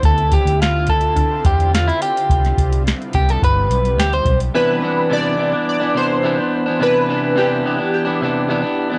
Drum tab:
HH |xxxxx-xxx-xxxxxx|xxxxxxxxx-xxxxxx|----------------|----------------|
SD |----o-------o---|-o--o-------o---|----------------|----------------|
BD |o-o---o-o-o-----|o-o---o-o-----o-|----------------|----------------|